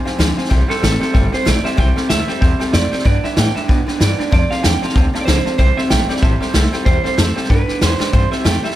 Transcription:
0.05 F2 C3 D#4 F4 C5 F5 G#5, muted upright bass stroke, snare
0.19 D2 F2 D3 F3 G#3 D#4 F4 C5 F5 G#5, snare, hi-hat pedal
0.36 F2 C3 D#4 F4 C5 F5 G#5, muted upright bass stroke, snare
0.45 snare
0.49 C2 C3 E3 G3 C4 E4 A4 C5 E5 G5, kick, snare
0.68 C3 G3 C4 E4 A4 C5 E5 G5, snare
0.81 A1 C3 E3 G3 A3 C4 E4 A4 C5 E5 G5, snare, hi-hat pedal
1.00 C3 G3 C4 E4 A4 C5 E5 G5, muted upright bass stroke, snare
1.13 G1 C3 G3 C4 E4 A4 C5 E5 G5, kick, snare
1.32 C3 G3 C4 E4 A4 C5 E5 G5, muted upright bass stroke, snare
1.45 A#1 C3 E3 G3 A3 C4 E4 A4 C5 D5 E5 G5, snare, hi-hat pedal
1.63 C3 G3 C4 E4 A4 C5 E5 G5, muted upright bass stroke, snare
1.77 C2 C3 E3 G3 C4 E4 A4 C5 E5 G5, kick, snare
1.95 C3 G3 C4 E4 A4 C5 E5 G5, snare
2.09 D2 C3 E3 G3 A3 C4 E4 A4 C5 E5 G5, snare, hi-hat pedal
2.27 C3 G3 C4 E4 A4 C5 E5 G5, snare
2.41 E2 C3 G3 C4 E4 C5 E5 G5, kick, snare
2.59 C3 G3 C4 E4 A4 C5 E5 G5, muted upright bass stroke, snare
2.73 F2 C3 E3 G3 A3 C4 E4 A4 C5 D5 E5 G5, snare, hi-hat pedal
2.91 C3 G3 C4 E4 A4 C5 E5 G5, muted upright bass stroke, snare
2.99 snare
3.04 G2 D3 G3 B3 D4 E4 B4 D5 G5, kick, snare
3.23 G2 D3 D4 E4 B4 D5 E5 G5, muted upright bass stroke, snare
3.36 G2 A2 E3 G3 B3 D4 E4 B4 D5 G5 A5, snare, hi-hat pedal
3.55 G2 D3 D4 E4 B4 D5 E5 G5, muted upright bass stroke, snare
3.68 G2 B2 D3 B3 D4 E4 B4 D5 G5, kick, snare
3.86 G2 D3 D4 E4 B4 D5 G5, muted upright bass stroke, snare
4.00 G2 E3 G3 B3 D4 E4 B4 D5 G5, snare, hi-hat pedal
4.18 G2 D3 D4 E4 B4 D5 G5, muted upright bass stroke, snare
4.31 F2 C3 F3 A3 C4 A4 C5 D5 F5 A5, kick, snare
4.50 F2 C3 C4 A4 C5 D5 F5 A5, muted upright bass stroke, snare
4.63 E2 F2 D3 F3 A3 C4 A4 C5 D5 F5 G5 A5, snare, hi-hat pedal
4.82 F2 C3 C4 A4 C5 D5 F5 A5, muted upright bass stroke, snare
4.89 snare
4.95 D2 F2 C3 A3 C4 A4 C5 D5 F5 A5, kick, snare
5.13 F2 C3 C4 A4 C5 D5 F5 A5, snare
5.21 D5
5.25 C#2 F2 D3 F3 A3 C4 A4 C5 D5 F5 A5, snare, hi-hat pedal
5.45 F2 C3 C4 A4 C5 D5 F5 A5, muted upright bass stroke, snare
5.58 C2 C3 E3 G3 C4 E4 A4 C5 E5 G5, kick, snare
5.77 C3 G3 C4 E4 A4 C5 E5 G5, snare
5.89 A#1 C3 E3 G3 A3 C4 E4 A4 C5 E5 G5, snare, hi-hat pedal
6.08 C3 G3 C4 E4 A4 C5 D5 E5 G5, muted upright bass stroke, snare
6.16 snare
6.21 A1 C3 G3 C4 E4 A4 C5 E5 A5, kick, snare
6.40 C3 G3 C4 E4 A4 C5 E5 G5, muted upright bass stroke, snare
6.53 C2 C3 E3 G3 A3 C4 E4 A4 C5 E5 G5, snare, hi-hat pedal
6.72 C3 G3 C4 E4 A4 C5 E5 G5, snare
6.85 E2 C3 E3 G3 C4 E4 A4 C5 E5 G5, kick, snare
7.04 C3 G3 C4 E4 A4 C5 E5 G5, muted upright bass stroke, snare
7.17 F2 C3 E3 G3 A3 C4 E4 A4 C5 E5 A5, snare, hi-hat pedal
7.36 C3 G3 C4 E4 A4 C5 E5 G5, muted upright bass stroke, snare
7.44 snare
7.49 G2 D3 G3 D4 E4 B4 D5 G5, kick, snare
7.67 G2 D3 D4 E4 B4 D5 G5, muted upright bass stroke, snare
7.80 E2 G2 E3 G3 D4 E4 B4 C5 D5 G5, snare, hi-hat pedal
7.99 G2 D3 D4 E4 B4 D5 G5, muted upright bass stroke, snare
8.12 G2 C3 E3 G3 C4 E4 A4 C5 E5 G5, kick, snare
8.31 C3 G3 C4 E4 A4 C5 E5 G5, muted upright bass stroke, snare
8.44 F2 C3 E3 G3 A3 C4 E4 A4 C5 E5 G5, snare, hi-hat pedal
8.63 C3 G3 C4 E4 A4 C5 E5 G5, snare
8.71 snare

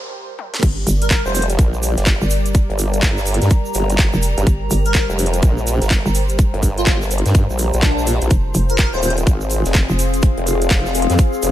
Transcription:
Already playing: G3 G4 A#4 C5
0.39 high tom
0.54 snare
0.63 G1 G3 G4 A#4 D5, kick, closed hi-hat, crash, shaker
0.87 G1, closed hi-hat, open hi-hat, shaker
1.02 A#4, closed hi-hat, shaker
1.10 A#4, kick, snare, clap, closed hi-hat, shaker
1.26 F1 C5, shaker
1.35 C5, closed hi-hat, open hi-hat, shaker
1.42 closed hi-hat
1.49 closed hi-hat, shaker
1.59 A#1, kick, closed hi-hat, shaker
1.68 A#5
1.74 shaker
1.83 closed hi-hat, open hi-hat, shaker
1.97 G1, snare, closed hi-hat, shaker
2.06 kick, snare, clap, closed hi-hat, shaker
2.21 G1, shaker
2.30 closed hi-hat, open hi-hat, shaker
2.46 closed hi-hat, shaker
2.55 kick, closed hi-hat, shaker
2.70 G1, closed hi-hat
2.79 closed hi-hat, open hi-hat, shaker
2.93 closed hi-hat, shaker
3.03 G1, kick, snare, clap, closed hi-hat, shaker
3.18 snare, shaker
3.25 closed hi-hat, open hi-hat, shaker
3.34 closed hi-hat
3.42 G2, snare, closed hi-hat, shaker
3.50 kick, closed hi-hat, shaker
3.65 shaker
3.74 G1, closed hi-hat, open hi-hat, shaker
3.90 closed hi-hat, shaker
3.98 kick, snare, clap, closed hi-hat, shaker
4.13 F1, shaker
4.22 closed hi-hat, open hi-hat, shaker
4.38 G1, closed hi-hat, shaker
4.47 G1 C5, kick, closed hi-hat, shaker
4.71 G1, closed hi-hat, open hi-hat, shaker
4.85 A#4, closed hi-hat, shaker
4.94 A#4, kick, snare, clap, closed hi-hat, shaker
5.10 F1, shaker
5.19 closed hi-hat, open hi-hat, shaker
5.26 closed hi-hat
5.33 closed hi-hat, shaker
5.42 A#1, kick, closed hi-hat, shaker
5.58 shaker
5.67 closed hi-hat, open hi-hat, shaker
5.82 G1, snare, closed hi-hat, shaker
5.91 kick, snare, clap, closed hi-hat, shaker
6.06 G1, shaker
6.15 closed hi-hat, open hi-hat, shaker
6.29 closed hi-hat, shaker
6.39 kick, closed hi-hat, shaker
6.54 G1, closed hi-hat
6.63 kick, closed hi-hat, open hi-hat, shaker
6.78 F4, closed hi-hat, shaker
6.86 G1, kick, snare, clap, closed hi-hat, shaker
7.01 snare, shaker
7.11 closed hi-hat, open hi-hat, shaker
7.18 closed hi-hat
7.26 G2, snare, closed hi-hat, shaker
7.35 G2, kick, closed hi-hat, shaker
7.50 A#1, shaker
7.58 closed hi-hat, open hi-hat, shaker
7.73 A#1, closed hi-hat, shaker
7.83 D4, kick, snare, clap, closed hi-hat, shaker
7.98 shaker
8.07 closed hi-hat, open hi-hat, shaker
8.21 A#1, closed hi-hat, shaker
8.30 F1 C4 F4 G#4, kick, closed hi-hat, shaker
8.54 F1 G#4, closed hi-hat, open hi-hat, shaker
8.69 A#4, closed hi-hat, shaker
8.78 A#4, kick, snare, clap, closed hi-hat, shaker
8.93 D#1 C5, shaker
9.03 C5, closed hi-hat, open hi-hat, shaker
9.10 closed hi-hat
9.17 closed hi-hat, shaker
9.27 G#1, kick, closed hi-hat, shaker
9.37 F5, shaker
9.50 closed hi-hat, open hi-hat, shaker
9.65 F1 C6, snare, closed hi-hat, shaker
9.74 kick, snare, clap, closed hi-hat, shaker
9.89 F1, shaker
9.99 closed hi-hat, open hi-hat, shaker
10.14 closed hi-hat, shaker
10.22 kick, closed hi-hat, shaker
10.37 F1, closed hi-hat
10.47 closed hi-hat, open hi-hat, shaker
10.62 closed hi-hat, shaker
10.70 F1, kick, snare, clap, closed hi-hat, shaker
10.86 snare, shaker
10.95 closed hi-hat, open hi-hat, shaker
11.02 closed hi-hat
11.10 F2, snare, closed hi-hat, shaker
11.18 kick, closed hi-hat, shaker
11.33 shaker
11.42 F1, closed hi-hat, open hi-hat, shaker

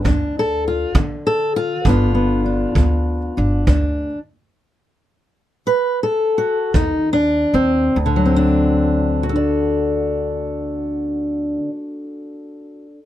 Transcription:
0.04 D2 D4, kick
0.39 A4
0.68 F4
0.95 D3, kick
1.27 A4
1.56 F4
1.85 G1 G2 D3 B3 D4, kick
1.89 F4
2.15 B3
2.46 D4
2.75 D2 D3, kick
3.37 G1 D4
3.67 D2 D4, kick
5.67 B4
6.03 A4
6.38 F#4
6.74 D#2 D#4, kick
7.13 D4
7.54 D#2 C4
7.96 D2
8.06 D3
8.16 F#3
8.25 C4
8.36 D4
9.23 F#4
9.29 A4
9.36 D5

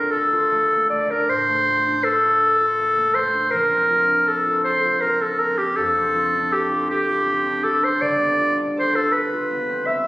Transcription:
Already playing: D2 F3 A3 C4 D4 F4 A4 A#4
0.11 A4
0.33 F4
0.52 A3
0.71 A#3
0.90 A3 D5
1.11 D4 A#4
1.29 A2 C5
1.48 A3
1.68 F4
1.86 D4
2.04 A4
2.24 F4
2.43 A4
2.61 F4
2.79 A3
2.96 A#3
3.14 A3 C5
3.34 D4
3.51 A#1 A#4
3.71 C4
3.90 F4
4.08 D4
4.26 A4
4.47 F4
4.64 A4 C5
4.85 F4
5.01 C4 A#4
5.22 D4 A4
5.39 C4 A#4
5.58 D4 G4
5.76 F2 A4
5.97 C4
6.15 F4
6.35 D4
6.53 G4 A4
6.71 F4
6.90 G4 A4
7.08 F4
7.26 C4
7.46 D4
7.64 C4 A4
7.82 D4 C5
8.01 G1 D5
8.19 B3
8.40 F4
8.58 D4
8.77 A4 C5
8.95 F4 A4
9.12 A4 B4
9.33 F4
9.50 B3
9.69 C4
9.87 B3 E5

